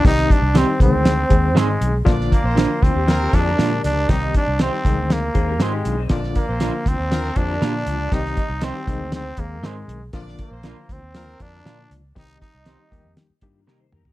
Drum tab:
HH |x-x-x-x-x-x-x-x-|x-x-x-x-x-x-x-x-|x-x-x-x-x-x-x-x-|x-x-x-x-x-x-x-x-|
SD |oo--o---o---o---|oo--o---o---o---|o---o---o---o---|oo--o---o---o---|
T2 |----------------|----------------|----------------|----------------|
FT |----------------|----------------|----------------|----------------|
BD |o-o---o---o-----|o-o---o---o-----|o-o---o---o-----|o-o---o---o-----|

HH |x-x-x-x-x-x-x-x-|x-x-x-x-x-x-x-x-|x-x-x-x-x-x-----|
SD |oo--o---o---o---|oo--o---o---o---|o---o---o---o---|
T2 |----------------|----------------|--------------o-|
FT |----------------|----------------|---------------o|
BD |o-o---o---o-----|o-o---o---o-----|o-o---o---o-----|